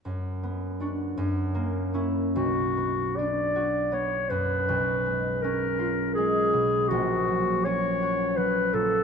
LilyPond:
<<
  \new Staff \with { instrumentName = "Clarinet" } { \time 3/4 \key b \minor \tempo 4 = 81 r2. | fis'4 d''4 cis''8 b'8~ | b'4 ais'4 gis'4 | fis'4 cis''4 b'8 a'8 | }
  \new Staff \with { instrumentName = "Harp" } { \time 3/4 \key b \minor fis,8 b8 <d' fis'>8 fis,8 ais8 <cis' e'>8 | b,,8 b8 d'8 fis'8 b8 fis,8 | b,,8 gis8 cis'8 eis'8 gis8 b,8 | ais,,8 fis8 cis'8 fis'8 fis8 ais,8 | }
>>